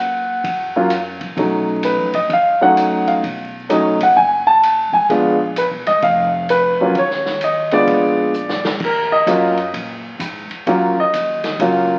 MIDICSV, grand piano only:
0, 0, Header, 1, 2, 480
1, 0, Start_track
1, 0, Key_signature, -6, "minor"
1, 0, Tempo, 465116
1, 1415, Time_signature, 4, 2, 24, 8
1, 12372, End_track
2, 0, Start_track
2, 0, Title_t, "Grand piano"
2, 0, Program_c, 0, 0
2, 0, Note_on_c, 0, 78, 79
2, 785, Note_on_c, 0, 54, 57
2, 791, Note_on_c, 0, 58, 51
2, 791, Note_on_c, 0, 61, 54
2, 793, Note_on_c, 0, 65, 68
2, 894, Note_off_c, 0, 78, 0
2, 927, Note_off_c, 0, 54, 0
2, 930, Note_off_c, 0, 58, 0
2, 930, Note_off_c, 0, 61, 0
2, 931, Note_off_c, 0, 65, 0
2, 1422, Note_on_c, 0, 54, 51
2, 1429, Note_on_c, 0, 61, 42
2, 1430, Note_on_c, 0, 57, 47
2, 1435, Note_on_c, 0, 63, 55
2, 1905, Note_on_c, 0, 71, 66
2, 2149, Note_off_c, 0, 54, 0
2, 2152, Note_off_c, 0, 61, 0
2, 2153, Note_off_c, 0, 57, 0
2, 2155, Note_off_c, 0, 63, 0
2, 2191, Note_off_c, 0, 71, 0
2, 2215, Note_on_c, 0, 75, 72
2, 2366, Note_off_c, 0, 75, 0
2, 2408, Note_on_c, 0, 77, 84
2, 2696, Note_on_c, 0, 54, 56
2, 2703, Note_on_c, 0, 61, 53
2, 2704, Note_on_c, 0, 57, 53
2, 2710, Note_on_c, 0, 78, 90
2, 2713, Note_off_c, 0, 77, 0
2, 2713, Note_on_c, 0, 63, 62
2, 3174, Note_on_c, 0, 77, 74
2, 3193, Note_off_c, 0, 78, 0
2, 3226, Note_off_c, 0, 77, 0
2, 3305, Note_off_c, 0, 54, 0
2, 3308, Note_off_c, 0, 61, 0
2, 3309, Note_off_c, 0, 57, 0
2, 3313, Note_off_c, 0, 63, 0
2, 3812, Note_on_c, 0, 54, 54
2, 3814, Note_on_c, 0, 57, 55
2, 3817, Note_on_c, 0, 61, 55
2, 3820, Note_on_c, 0, 63, 65
2, 3842, Note_on_c, 0, 75, 66
2, 4095, Note_off_c, 0, 54, 0
2, 4096, Note_off_c, 0, 57, 0
2, 4098, Note_off_c, 0, 61, 0
2, 4099, Note_off_c, 0, 63, 0
2, 4150, Note_off_c, 0, 75, 0
2, 4161, Note_on_c, 0, 78, 78
2, 4300, Note_off_c, 0, 78, 0
2, 4300, Note_on_c, 0, 80, 85
2, 4589, Note_off_c, 0, 80, 0
2, 4612, Note_on_c, 0, 81, 102
2, 5092, Note_on_c, 0, 80, 75
2, 5104, Note_off_c, 0, 81, 0
2, 5245, Note_off_c, 0, 80, 0
2, 5259, Note_on_c, 0, 56, 55
2, 5262, Note_on_c, 0, 59, 48
2, 5267, Note_on_c, 0, 62, 50
2, 5272, Note_on_c, 0, 65, 63
2, 5539, Note_off_c, 0, 56, 0
2, 5540, Note_off_c, 0, 59, 0
2, 5543, Note_off_c, 0, 62, 0
2, 5545, Note_off_c, 0, 65, 0
2, 5758, Note_on_c, 0, 71, 74
2, 5826, Note_off_c, 0, 71, 0
2, 6059, Note_on_c, 0, 75, 85
2, 6225, Note_off_c, 0, 75, 0
2, 6225, Note_on_c, 0, 77, 92
2, 6667, Note_off_c, 0, 77, 0
2, 6710, Note_on_c, 0, 71, 82
2, 7025, Note_on_c, 0, 54, 58
2, 7029, Note_on_c, 0, 58, 52
2, 7037, Note_on_c, 0, 61, 58
2, 7040, Note_on_c, 0, 65, 65
2, 7149, Note_off_c, 0, 71, 0
2, 7166, Note_off_c, 0, 54, 0
2, 7168, Note_off_c, 0, 58, 0
2, 7173, Note_off_c, 0, 61, 0
2, 7174, Note_off_c, 0, 65, 0
2, 7209, Note_on_c, 0, 73, 88
2, 7676, Note_on_c, 0, 75, 79
2, 7686, Note_off_c, 0, 73, 0
2, 7968, Note_on_c, 0, 59, 50
2, 7972, Note_on_c, 0, 62, 54
2, 7974, Note_on_c, 0, 56, 56
2, 7981, Note_on_c, 0, 65, 61
2, 7981, Note_on_c, 0, 74, 90
2, 7988, Note_off_c, 0, 75, 0
2, 8582, Note_off_c, 0, 59, 0
2, 8584, Note_off_c, 0, 62, 0
2, 8585, Note_off_c, 0, 56, 0
2, 8588, Note_off_c, 0, 65, 0
2, 8894, Note_off_c, 0, 74, 0
2, 9130, Note_on_c, 0, 70, 67
2, 9414, Note_on_c, 0, 75, 92
2, 9417, Note_off_c, 0, 70, 0
2, 9567, Note_on_c, 0, 54, 58
2, 9569, Note_on_c, 0, 58, 52
2, 9579, Note_on_c, 0, 61, 52
2, 9580, Note_on_c, 0, 65, 66
2, 9854, Note_off_c, 0, 54, 0
2, 9855, Note_off_c, 0, 58, 0
2, 9860, Note_off_c, 0, 61, 0
2, 9860, Note_off_c, 0, 65, 0
2, 10017, Note_off_c, 0, 75, 0
2, 11011, Note_on_c, 0, 58, 57
2, 11012, Note_on_c, 0, 54, 64
2, 11021, Note_on_c, 0, 61, 56
2, 11026, Note_on_c, 0, 65, 65
2, 11057, Note_on_c, 0, 70, 50
2, 11296, Note_off_c, 0, 54, 0
2, 11296, Note_off_c, 0, 58, 0
2, 11301, Note_off_c, 0, 61, 0
2, 11304, Note_off_c, 0, 65, 0
2, 11342, Note_off_c, 0, 70, 0
2, 11350, Note_on_c, 0, 75, 82
2, 11946, Note_off_c, 0, 75, 0
2, 11975, Note_on_c, 0, 54, 60
2, 11981, Note_on_c, 0, 58, 53
2, 11986, Note_on_c, 0, 65, 64
2, 11987, Note_on_c, 0, 61, 52
2, 12372, Note_off_c, 0, 54, 0
2, 12372, Note_off_c, 0, 58, 0
2, 12372, Note_off_c, 0, 61, 0
2, 12372, Note_off_c, 0, 65, 0
2, 12372, End_track
0, 0, End_of_file